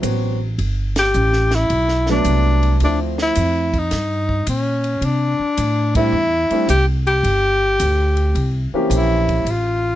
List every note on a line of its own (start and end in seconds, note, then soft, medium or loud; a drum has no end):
0.02 0.57 A1 medium
0.02 0.36 F#3 medium
0.02 0.37 B3 medium
0.02 0.37 C4 medium
0.02 0.37 F#4 medium
0.02 hi-hat pedal medium
0.02 ride medium
0.58 1.12 G1 medium
0.58 ride medium
0.96 1.56 G4 loud
0.96 snare medium
0.96 ride medium
1.14 1.68 A1 medium
1.14 hi-hat pedal medium
1.33 snare soft
1.51 2.09 E4 loud
1.51 snare soft
1.51 ride soft
1.70 2.24 B1 medium
1.70 ride medium
1.88 snare soft
2.06 2.78 F#3 medium
2.06 2.78 A3 medium
2.06 2.79 B3 medium
2.06 snare soft
2.10 2.79 D4 medium
2.24 2.79 C2 medium
2.24 hi-hat pedal soft
2.24 ride medium
2.63 ride soft
2.80 3.35 D2 medium
2.80 3.67 F3 medium
2.80 3.68 A3 medium
2.80 3.68 C4 medium
2.80 ride medium
2.84 3.00 D4 medium
2.84 3.68 E4 medium
3.18 3.80 E4 medium
3.18 snare soft
3.35 3.90 F2 medium
3.35 hi-hat pedal medium
3.35 ride medium
3.74 kick medium
3.74 ride soft
3.78 4.48 D#4 medium
3.91 4.46 G2 medium
3.91 snare soft
3.91 ride medium
4.29 kick soft
4.47 5.01 A#2 medium
4.47 5.07 C#4 medium
4.47 hi-hat pedal medium
4.47 ride medium
4.84 ride soft
5.01 5.37 C3 medium
5.01 5.96 D4 medium
5.01 ride medium
5.39 muted upright bass stroke soft
5.57 6.12 A2 medium
5.57 hi-hat pedal medium
5.57 ride medium
5.95 6.12 G3 medium
5.95 6.13 A3 medium
5.95 6.13 C4 medium
5.95 6.13 D4 medium
5.95 6.66 E4 medium
5.95 6.13 E4 medium
5.95 kick medium
5.95 ride medium
6.12 6.48 E2 medium
6.50 6.68 G3 medium
6.50 6.68 A3 medium
6.50 6.68 C4 medium
6.50 6.68 D4 medium
6.50 6.68 E4 medium
6.50 muted upright bass stroke soft
6.50 ride soft
6.69 7.23 C2 medium
6.69 6.86 G4 medium
6.69 hi-hat pedal medium
6.69 ride medium
7.07 8.69 G4 loud
7.07 ride soft
7.23 7.78 G1 medium
7.23 ride medium
7.80 8.34 D2 medium
7.80 hi-hat pedal medium
7.80 ride medium
8.17 ride soft
8.35 8.70 C2 medium
8.35 ride soft
8.72 9.44 E3 medium
8.72 9.44 A#3 medium
8.72 9.44 C4 medium
8.72 9.44 C#4 medium
8.72 9.44 G4 medium
8.72 muted upright bass stroke soft
8.90 9.44 A#1 medium
8.90 hi-hat pedal medium
8.90 ride medium
8.95 9.52 E4 medium
9.29 kick medium
9.29 ride soft
9.45 9.95 A1 medium
9.45 ride medium
9.51 9.95 F4 medium